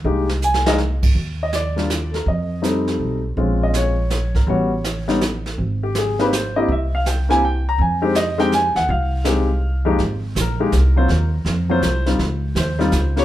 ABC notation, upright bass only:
X:1
M:3/4
L:1/8
Q:"Swing" 1/4=163
K:Fm
V:1 name="Upright bass" clef=bass
C,,6 | E,,6 | F,,4 =B,,,2 | B,,,6 |
=A,,,6 | A,,,6 | C,,6 | F,,4- F,, E,, |
C,,6 | A,,,2 B,,,2 C,,2 | E,,2 F,,2 C,,2 | D,,2 E,,2 D,,2 |]